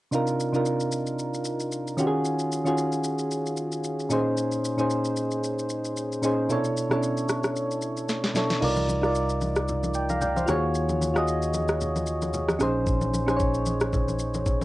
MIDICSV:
0, 0, Header, 1, 4, 480
1, 0, Start_track
1, 0, Tempo, 530973
1, 116, Time_signature, 4, 2, 24, 8
1, 13240, End_track
2, 0, Start_track
2, 0, Title_t, "Synth keys"
2, 0, Program_c, 0, 88
2, 99, Note_on_c, 0, 48, 75
2, 107, Note_on_c, 0, 62, 72
2, 115, Note_on_c, 0, 63, 72
2, 125, Note_on_c, 0, 65, 73
2, 132, Note_on_c, 0, 70, 83
2, 276, Control_c, 0, 64, 127
2, 400, Note_off_c, 0, 48, 0
2, 404, Note_off_c, 0, 62, 0
2, 408, Note_off_c, 0, 63, 0
2, 413, Note_off_c, 0, 65, 0
2, 417, Note_off_c, 0, 70, 0
2, 471, Note_on_c, 0, 48, 81
2, 479, Note_on_c, 0, 62, 74
2, 487, Note_on_c, 0, 63, 74
2, 495, Note_on_c, 0, 65, 73
2, 504, Note_on_c, 0, 70, 89
2, 1242, Note_off_c, 0, 48, 0
2, 1246, Note_off_c, 0, 62, 0
2, 1251, Note_off_c, 0, 63, 0
2, 1255, Note_off_c, 0, 65, 0
2, 1259, Note_off_c, 0, 70, 0
2, 1781, Note_on_c, 0, 51, 86
2, 1789, Note_on_c, 0, 61, 77
2, 1797, Note_on_c, 0, 65, 75
2, 1806, Note_on_c, 0, 66, 77
2, 1807, Control_c, 0, 64, 0
2, 1814, Note_on_c, 0, 67, 78
2, 1868, Note_off_c, 0, 67, 0
2, 1871, Note_on_c, 0, 68, 93
2, 1983, Control_c, 0, 64, 127
2, 2268, Note_off_c, 0, 51, 0
2, 2272, Note_off_c, 0, 61, 0
2, 2277, Note_off_c, 0, 65, 0
2, 2281, Note_off_c, 0, 66, 0
2, 2314, Note_off_c, 0, 68, 0
2, 2391, Note_on_c, 0, 51, 80
2, 2400, Note_on_c, 0, 61, 75
2, 2408, Note_on_c, 0, 65, 75
2, 2417, Note_on_c, 0, 66, 75
2, 2425, Note_on_c, 0, 68, 91
2, 3163, Note_off_c, 0, 51, 0
2, 3167, Note_off_c, 0, 61, 0
2, 3171, Note_off_c, 0, 65, 0
2, 3176, Note_off_c, 0, 66, 0
2, 3179, Note_off_c, 0, 68, 0
2, 3700, Note_on_c, 0, 46, 86
2, 3709, Note_on_c, 0, 61, 78
2, 3717, Note_on_c, 0, 63, 78
2, 3725, Control_c, 0, 64, 0
2, 3726, Note_on_c, 0, 68, 75
2, 3734, Note_on_c, 0, 72, 94
2, 3867, Control_c, 0, 64, 127
2, 4188, Note_off_c, 0, 46, 0
2, 4192, Note_off_c, 0, 61, 0
2, 4197, Note_off_c, 0, 63, 0
2, 4201, Note_off_c, 0, 68, 0
2, 4205, Note_off_c, 0, 72, 0
2, 4311, Note_on_c, 0, 46, 81
2, 4320, Note_on_c, 0, 61, 74
2, 4329, Note_on_c, 0, 63, 76
2, 4336, Note_on_c, 0, 68, 77
2, 4346, Note_on_c, 0, 72, 88
2, 5083, Note_off_c, 0, 46, 0
2, 5087, Note_off_c, 0, 61, 0
2, 5092, Note_off_c, 0, 63, 0
2, 5095, Note_off_c, 0, 68, 0
2, 5100, Note_off_c, 0, 72, 0
2, 5620, Note_on_c, 0, 46, 80
2, 5628, Note_on_c, 0, 61, 79
2, 5637, Note_on_c, 0, 63, 76
2, 5646, Note_on_c, 0, 68, 76
2, 5653, Note_on_c, 0, 72, 88
2, 5824, Note_off_c, 0, 46, 0
2, 5829, Note_off_c, 0, 61, 0
2, 5833, Note_off_c, 0, 63, 0
2, 5838, Note_off_c, 0, 68, 0
2, 5841, Note_off_c, 0, 72, 0
2, 5861, Note_on_c, 0, 47, 79
2, 5869, Note_on_c, 0, 62, 73
2, 5877, Note_on_c, 0, 64, 73
2, 5885, Note_on_c, 0, 69, 77
2, 5887, Control_c, 0, 64, 0
2, 5895, Note_on_c, 0, 73, 92
2, 6070, Control_c, 0, 64, 127
2, 6161, Note_off_c, 0, 47, 0
2, 6165, Note_off_c, 0, 62, 0
2, 6169, Note_off_c, 0, 64, 0
2, 6174, Note_off_c, 0, 69, 0
2, 6178, Note_off_c, 0, 73, 0
2, 6231, Note_on_c, 0, 47, 82
2, 6240, Note_on_c, 0, 61, 59
2, 6249, Note_on_c, 0, 64, 74
2, 6256, Note_on_c, 0, 69, 73
2, 6265, Note_on_c, 0, 73, 90
2, 6296, Note_off_c, 0, 61, 0
2, 6297, Note_on_c, 0, 62, 76
2, 7003, Note_off_c, 0, 47, 0
2, 7012, Note_off_c, 0, 64, 0
2, 7015, Note_off_c, 0, 69, 0
2, 7020, Note_off_c, 0, 73, 0
2, 7036, Note_off_c, 0, 62, 0
2, 7538, Note_on_c, 0, 47, 81
2, 7546, Note_on_c, 0, 62, 77
2, 7555, Note_on_c, 0, 64, 73
2, 7563, Note_on_c, 0, 69, 77
2, 7572, Note_on_c, 0, 73, 89
2, 7744, Note_off_c, 0, 47, 0
2, 7748, Note_off_c, 0, 62, 0
2, 7752, Note_off_c, 0, 64, 0
2, 7756, Note_off_c, 0, 69, 0
2, 7760, Note_off_c, 0, 73, 0
2, 7780, Note_on_c, 0, 63, 81
2, 7790, Note_on_c, 0, 65, 74
2, 7801, Note_on_c, 0, 70, 74
2, 7806, Control_c, 0, 64, 0
2, 7812, Note_on_c, 0, 74, 90
2, 7982, Control_c, 0, 64, 127
2, 8081, Note_off_c, 0, 63, 0
2, 8086, Note_off_c, 0, 65, 0
2, 8091, Note_off_c, 0, 70, 0
2, 8097, Note_off_c, 0, 74, 0
2, 8151, Note_on_c, 0, 63, 82
2, 8162, Note_on_c, 0, 65, 76
2, 8173, Note_on_c, 0, 70, 73
2, 8184, Note_on_c, 0, 74, 85
2, 8922, Note_off_c, 0, 63, 0
2, 8928, Note_off_c, 0, 65, 0
2, 8934, Note_off_c, 0, 70, 0
2, 8939, Note_off_c, 0, 74, 0
2, 8995, Note_on_c, 0, 79, 64
2, 9001, Note_on_c, 0, 74, 54
2, 9121, Note_off_c, 0, 79, 0
2, 9124, Note_off_c, 0, 74, 0
2, 9126, Note_on_c, 0, 82, 65
2, 9131, Note_on_c, 0, 77, 59
2, 9230, Note_off_c, 0, 82, 0
2, 9232, Note_off_c, 0, 77, 0
2, 9234, Note_on_c, 0, 79, 68
2, 9240, Note_on_c, 0, 74, 58
2, 9360, Note_off_c, 0, 79, 0
2, 9363, Note_off_c, 0, 74, 0
2, 9367, Note_on_c, 0, 77, 62
2, 9372, Note_on_c, 0, 72, 50
2, 9457, Note_on_c, 0, 65, 89
2, 9469, Note_on_c, 0, 66, 78
2, 9480, Note_on_c, 0, 68, 81
2, 9489, Control_c, 0, 64, 0
2, 9491, Note_on_c, 0, 73, 99
2, 9595, Note_off_c, 0, 77, 0
2, 9598, Note_off_c, 0, 72, 0
2, 9655, Control_c, 0, 64, 127
2, 9947, Note_off_c, 0, 65, 0
2, 9952, Note_off_c, 0, 66, 0
2, 9958, Note_off_c, 0, 68, 0
2, 9963, Note_off_c, 0, 73, 0
2, 10070, Note_on_c, 0, 65, 80
2, 10081, Note_on_c, 0, 66, 79
2, 10093, Note_on_c, 0, 68, 77
2, 10103, Note_on_c, 0, 75, 94
2, 10842, Note_off_c, 0, 65, 0
2, 10848, Note_off_c, 0, 66, 0
2, 10853, Note_off_c, 0, 68, 0
2, 10859, Note_off_c, 0, 75, 0
2, 11379, Note_on_c, 0, 61, 88
2, 11390, Note_on_c, 0, 63, 76
2, 11402, Note_on_c, 0, 68, 77
2, 11407, Control_c, 0, 64, 0
2, 11413, Note_on_c, 0, 72, 94
2, 11573, Control_c, 0, 64, 127
2, 11867, Note_off_c, 0, 61, 0
2, 11873, Note_off_c, 0, 63, 0
2, 11879, Note_off_c, 0, 68, 0
2, 11884, Note_off_c, 0, 72, 0
2, 11990, Note_on_c, 0, 61, 79
2, 12001, Note_on_c, 0, 63, 75
2, 12013, Note_on_c, 0, 68, 79
2, 12024, Note_on_c, 0, 72, 74
2, 12068, Note_off_c, 0, 72, 0
2, 12082, Note_on_c, 0, 73, 88
2, 12762, Note_off_c, 0, 61, 0
2, 12768, Note_off_c, 0, 63, 0
2, 12774, Note_off_c, 0, 68, 0
2, 12808, Note_off_c, 0, 73, 0
2, 13240, End_track
3, 0, Start_track
3, 0, Title_t, "Fingered electric bass"
3, 0, Program_c, 1, 33
3, 7795, Note_on_c, 1, 36, 79
3, 9442, Note_off_c, 1, 36, 0
3, 9476, Note_on_c, 1, 39, 82
3, 11360, Note_off_c, 1, 39, 0
3, 11394, Note_on_c, 1, 34, 83
3, 13240, Note_off_c, 1, 34, 0
3, 13240, End_track
4, 0, Start_track
4, 0, Title_t, "Drums"
4, 115, Note_on_c, 9, 82, 81
4, 205, Note_off_c, 9, 82, 0
4, 244, Note_on_c, 9, 82, 51
4, 335, Note_off_c, 9, 82, 0
4, 362, Note_on_c, 9, 82, 93
4, 452, Note_off_c, 9, 82, 0
4, 489, Note_on_c, 9, 82, 40
4, 579, Note_off_c, 9, 82, 0
4, 593, Note_on_c, 9, 82, 74
4, 683, Note_off_c, 9, 82, 0
4, 725, Note_on_c, 9, 82, 50
4, 815, Note_off_c, 9, 82, 0
4, 830, Note_on_c, 9, 82, 96
4, 921, Note_off_c, 9, 82, 0
4, 963, Note_on_c, 9, 82, 51
4, 1053, Note_off_c, 9, 82, 0
4, 1076, Note_on_c, 9, 82, 68
4, 1166, Note_off_c, 9, 82, 0
4, 1212, Note_on_c, 9, 82, 52
4, 1303, Note_off_c, 9, 82, 0
4, 1309, Note_on_c, 9, 82, 83
4, 1399, Note_off_c, 9, 82, 0
4, 1446, Note_on_c, 9, 82, 57
4, 1536, Note_off_c, 9, 82, 0
4, 1555, Note_on_c, 9, 82, 78
4, 1645, Note_off_c, 9, 82, 0
4, 1695, Note_on_c, 9, 82, 44
4, 1786, Note_off_c, 9, 82, 0
4, 1793, Note_on_c, 9, 82, 93
4, 1884, Note_off_c, 9, 82, 0
4, 2034, Note_on_c, 9, 82, 77
4, 2125, Note_off_c, 9, 82, 0
4, 2164, Note_on_c, 9, 82, 50
4, 2254, Note_off_c, 9, 82, 0
4, 2281, Note_on_c, 9, 82, 90
4, 2371, Note_off_c, 9, 82, 0
4, 2408, Note_on_c, 9, 82, 41
4, 2498, Note_off_c, 9, 82, 0
4, 2513, Note_on_c, 9, 82, 77
4, 2603, Note_off_c, 9, 82, 0
4, 2643, Note_on_c, 9, 82, 49
4, 2734, Note_off_c, 9, 82, 0
4, 2749, Note_on_c, 9, 82, 97
4, 2840, Note_off_c, 9, 82, 0
4, 2882, Note_on_c, 9, 82, 49
4, 2973, Note_off_c, 9, 82, 0
4, 2996, Note_on_c, 9, 82, 71
4, 3086, Note_off_c, 9, 82, 0
4, 3133, Note_on_c, 9, 82, 52
4, 3223, Note_off_c, 9, 82, 0
4, 3228, Note_on_c, 9, 82, 77
4, 3319, Note_off_c, 9, 82, 0
4, 3366, Note_on_c, 9, 82, 54
4, 3457, Note_off_c, 9, 82, 0
4, 3474, Note_on_c, 9, 82, 78
4, 3565, Note_off_c, 9, 82, 0
4, 3615, Note_on_c, 9, 82, 44
4, 3705, Note_off_c, 9, 82, 0
4, 3713, Note_on_c, 9, 82, 97
4, 3804, Note_off_c, 9, 82, 0
4, 3956, Note_on_c, 9, 82, 78
4, 4046, Note_off_c, 9, 82, 0
4, 4084, Note_on_c, 9, 82, 50
4, 4174, Note_off_c, 9, 82, 0
4, 4202, Note_on_c, 9, 82, 92
4, 4292, Note_off_c, 9, 82, 0
4, 4328, Note_on_c, 9, 82, 39
4, 4418, Note_off_c, 9, 82, 0
4, 4434, Note_on_c, 9, 82, 75
4, 4524, Note_off_c, 9, 82, 0
4, 4564, Note_on_c, 9, 82, 53
4, 4655, Note_off_c, 9, 82, 0
4, 4670, Note_on_c, 9, 82, 97
4, 4761, Note_off_c, 9, 82, 0
4, 4802, Note_on_c, 9, 82, 50
4, 4893, Note_off_c, 9, 82, 0
4, 4917, Note_on_c, 9, 82, 70
4, 5007, Note_off_c, 9, 82, 0
4, 5053, Note_on_c, 9, 82, 52
4, 5144, Note_off_c, 9, 82, 0
4, 5149, Note_on_c, 9, 82, 83
4, 5240, Note_off_c, 9, 82, 0
4, 5286, Note_on_c, 9, 82, 54
4, 5377, Note_off_c, 9, 82, 0
4, 5395, Note_on_c, 9, 82, 79
4, 5485, Note_off_c, 9, 82, 0
4, 5535, Note_on_c, 9, 82, 43
4, 5626, Note_off_c, 9, 82, 0
4, 5634, Note_on_c, 9, 82, 93
4, 5724, Note_off_c, 9, 82, 0
4, 5875, Note_on_c, 9, 82, 77
4, 5965, Note_off_c, 9, 82, 0
4, 6004, Note_on_c, 9, 82, 51
4, 6095, Note_off_c, 9, 82, 0
4, 6121, Note_on_c, 9, 82, 93
4, 6212, Note_off_c, 9, 82, 0
4, 6247, Note_on_c, 9, 37, 82
4, 6249, Note_on_c, 9, 82, 41
4, 6337, Note_off_c, 9, 37, 0
4, 6339, Note_off_c, 9, 82, 0
4, 6354, Note_on_c, 9, 82, 81
4, 6444, Note_off_c, 9, 82, 0
4, 6484, Note_on_c, 9, 82, 52
4, 6574, Note_off_c, 9, 82, 0
4, 6590, Note_on_c, 9, 82, 92
4, 6593, Note_on_c, 9, 37, 93
4, 6680, Note_off_c, 9, 82, 0
4, 6684, Note_off_c, 9, 37, 0
4, 6722, Note_on_c, 9, 82, 53
4, 6727, Note_on_c, 9, 37, 90
4, 6812, Note_off_c, 9, 82, 0
4, 6817, Note_off_c, 9, 37, 0
4, 6836, Note_on_c, 9, 82, 70
4, 6926, Note_off_c, 9, 82, 0
4, 6972, Note_on_c, 9, 82, 52
4, 7062, Note_off_c, 9, 82, 0
4, 7068, Note_on_c, 9, 82, 84
4, 7158, Note_off_c, 9, 82, 0
4, 7206, Note_on_c, 9, 82, 55
4, 7296, Note_off_c, 9, 82, 0
4, 7315, Note_on_c, 9, 82, 76
4, 7316, Note_on_c, 9, 38, 51
4, 7405, Note_off_c, 9, 82, 0
4, 7406, Note_off_c, 9, 38, 0
4, 7448, Note_on_c, 9, 38, 59
4, 7456, Note_on_c, 9, 82, 44
4, 7539, Note_off_c, 9, 38, 0
4, 7546, Note_off_c, 9, 82, 0
4, 7554, Note_on_c, 9, 82, 97
4, 7556, Note_on_c, 9, 38, 78
4, 7645, Note_off_c, 9, 82, 0
4, 7647, Note_off_c, 9, 38, 0
4, 7687, Note_on_c, 9, 82, 60
4, 7688, Note_on_c, 9, 38, 82
4, 7778, Note_off_c, 9, 38, 0
4, 7778, Note_off_c, 9, 82, 0
4, 7796, Note_on_c, 9, 49, 78
4, 7886, Note_off_c, 9, 49, 0
4, 7924, Note_on_c, 9, 63, 68
4, 7924, Note_on_c, 9, 82, 51
4, 8014, Note_off_c, 9, 63, 0
4, 8015, Note_off_c, 9, 82, 0
4, 8034, Note_on_c, 9, 63, 73
4, 8041, Note_on_c, 9, 82, 94
4, 8124, Note_off_c, 9, 63, 0
4, 8132, Note_off_c, 9, 82, 0
4, 8167, Note_on_c, 9, 37, 81
4, 8168, Note_on_c, 9, 82, 39
4, 8257, Note_off_c, 9, 37, 0
4, 8259, Note_off_c, 9, 82, 0
4, 8273, Note_on_c, 9, 82, 78
4, 8363, Note_off_c, 9, 82, 0
4, 8404, Note_on_c, 9, 82, 53
4, 8495, Note_off_c, 9, 82, 0
4, 8509, Note_on_c, 9, 82, 93
4, 8511, Note_on_c, 9, 63, 67
4, 8600, Note_off_c, 9, 82, 0
4, 8601, Note_off_c, 9, 63, 0
4, 8641, Note_on_c, 9, 82, 52
4, 8646, Note_on_c, 9, 37, 90
4, 8732, Note_off_c, 9, 82, 0
4, 8737, Note_off_c, 9, 37, 0
4, 8755, Note_on_c, 9, 82, 71
4, 8761, Note_on_c, 9, 64, 67
4, 8845, Note_off_c, 9, 82, 0
4, 8852, Note_off_c, 9, 64, 0
4, 8890, Note_on_c, 9, 63, 68
4, 8892, Note_on_c, 9, 82, 54
4, 8980, Note_off_c, 9, 63, 0
4, 8982, Note_off_c, 9, 82, 0
4, 8988, Note_on_c, 9, 82, 81
4, 9079, Note_off_c, 9, 82, 0
4, 9126, Note_on_c, 9, 82, 54
4, 9127, Note_on_c, 9, 63, 70
4, 9216, Note_off_c, 9, 82, 0
4, 9217, Note_off_c, 9, 63, 0
4, 9233, Note_on_c, 9, 64, 71
4, 9235, Note_on_c, 9, 82, 77
4, 9323, Note_off_c, 9, 64, 0
4, 9326, Note_off_c, 9, 82, 0
4, 9368, Note_on_c, 9, 63, 86
4, 9376, Note_on_c, 9, 82, 43
4, 9458, Note_off_c, 9, 63, 0
4, 9466, Note_off_c, 9, 82, 0
4, 9474, Note_on_c, 9, 64, 75
4, 9474, Note_on_c, 9, 82, 97
4, 9479, Note_on_c, 9, 37, 85
4, 9564, Note_off_c, 9, 82, 0
4, 9565, Note_off_c, 9, 64, 0
4, 9570, Note_off_c, 9, 37, 0
4, 9716, Note_on_c, 9, 82, 77
4, 9806, Note_off_c, 9, 82, 0
4, 9844, Note_on_c, 9, 63, 67
4, 9844, Note_on_c, 9, 82, 51
4, 9934, Note_off_c, 9, 63, 0
4, 9935, Note_off_c, 9, 82, 0
4, 9957, Note_on_c, 9, 63, 73
4, 9962, Note_on_c, 9, 82, 96
4, 10047, Note_off_c, 9, 63, 0
4, 10053, Note_off_c, 9, 82, 0
4, 10087, Note_on_c, 9, 37, 86
4, 10089, Note_on_c, 9, 82, 41
4, 10178, Note_off_c, 9, 37, 0
4, 10180, Note_off_c, 9, 82, 0
4, 10194, Note_on_c, 9, 82, 77
4, 10284, Note_off_c, 9, 82, 0
4, 10325, Note_on_c, 9, 82, 53
4, 10416, Note_off_c, 9, 82, 0
4, 10430, Note_on_c, 9, 82, 95
4, 10431, Note_on_c, 9, 63, 70
4, 10520, Note_off_c, 9, 82, 0
4, 10522, Note_off_c, 9, 63, 0
4, 10561, Note_on_c, 9, 82, 50
4, 10567, Note_on_c, 9, 37, 94
4, 10652, Note_off_c, 9, 82, 0
4, 10657, Note_off_c, 9, 37, 0
4, 10675, Note_on_c, 9, 82, 69
4, 10681, Note_on_c, 9, 64, 67
4, 10765, Note_off_c, 9, 82, 0
4, 10772, Note_off_c, 9, 64, 0
4, 10810, Note_on_c, 9, 63, 68
4, 10812, Note_on_c, 9, 82, 52
4, 10901, Note_off_c, 9, 63, 0
4, 10903, Note_off_c, 9, 82, 0
4, 10907, Note_on_c, 9, 82, 81
4, 10998, Note_off_c, 9, 82, 0
4, 11045, Note_on_c, 9, 82, 56
4, 11048, Note_on_c, 9, 63, 72
4, 11135, Note_off_c, 9, 82, 0
4, 11138, Note_off_c, 9, 63, 0
4, 11153, Note_on_c, 9, 82, 77
4, 11154, Note_on_c, 9, 64, 70
4, 11243, Note_off_c, 9, 82, 0
4, 11244, Note_off_c, 9, 64, 0
4, 11287, Note_on_c, 9, 37, 96
4, 11289, Note_on_c, 9, 63, 82
4, 11293, Note_on_c, 9, 82, 44
4, 11377, Note_off_c, 9, 37, 0
4, 11379, Note_off_c, 9, 63, 0
4, 11384, Note_off_c, 9, 82, 0
4, 11392, Note_on_c, 9, 82, 100
4, 11396, Note_on_c, 9, 64, 70
4, 11398, Note_on_c, 9, 37, 82
4, 11483, Note_off_c, 9, 82, 0
4, 11486, Note_off_c, 9, 64, 0
4, 11488, Note_off_c, 9, 37, 0
4, 11634, Note_on_c, 9, 82, 80
4, 11635, Note_on_c, 9, 36, 110
4, 11724, Note_off_c, 9, 82, 0
4, 11725, Note_off_c, 9, 36, 0
4, 11763, Note_on_c, 9, 63, 69
4, 11764, Note_on_c, 9, 82, 51
4, 11854, Note_off_c, 9, 63, 0
4, 11855, Note_off_c, 9, 82, 0
4, 11876, Note_on_c, 9, 63, 72
4, 11880, Note_on_c, 9, 82, 96
4, 11966, Note_off_c, 9, 63, 0
4, 11971, Note_off_c, 9, 82, 0
4, 12006, Note_on_c, 9, 37, 82
4, 12008, Note_on_c, 9, 82, 39
4, 12096, Note_off_c, 9, 37, 0
4, 12098, Note_off_c, 9, 82, 0
4, 12112, Note_on_c, 9, 82, 77
4, 12115, Note_on_c, 9, 36, 92
4, 12202, Note_off_c, 9, 82, 0
4, 12205, Note_off_c, 9, 36, 0
4, 12243, Note_on_c, 9, 82, 52
4, 12334, Note_off_c, 9, 82, 0
4, 12349, Note_on_c, 9, 82, 93
4, 12351, Note_on_c, 9, 63, 67
4, 12440, Note_off_c, 9, 82, 0
4, 12442, Note_off_c, 9, 63, 0
4, 12482, Note_on_c, 9, 82, 53
4, 12487, Note_on_c, 9, 37, 91
4, 12572, Note_off_c, 9, 82, 0
4, 12577, Note_off_c, 9, 37, 0
4, 12595, Note_on_c, 9, 36, 104
4, 12596, Note_on_c, 9, 82, 69
4, 12601, Note_on_c, 9, 64, 72
4, 12685, Note_off_c, 9, 36, 0
4, 12686, Note_off_c, 9, 82, 0
4, 12692, Note_off_c, 9, 64, 0
4, 12731, Note_on_c, 9, 63, 64
4, 12733, Note_on_c, 9, 82, 51
4, 12821, Note_off_c, 9, 63, 0
4, 12824, Note_off_c, 9, 82, 0
4, 12830, Note_on_c, 9, 82, 80
4, 12920, Note_off_c, 9, 82, 0
4, 12966, Note_on_c, 9, 82, 57
4, 12968, Note_on_c, 9, 63, 70
4, 13056, Note_off_c, 9, 82, 0
4, 13059, Note_off_c, 9, 63, 0
4, 13074, Note_on_c, 9, 36, 90
4, 13074, Note_on_c, 9, 82, 83
4, 13076, Note_on_c, 9, 64, 71
4, 13164, Note_off_c, 9, 36, 0
4, 13165, Note_off_c, 9, 82, 0
4, 13167, Note_off_c, 9, 64, 0
4, 13211, Note_on_c, 9, 63, 84
4, 13240, Note_off_c, 9, 63, 0
4, 13240, End_track
0, 0, End_of_file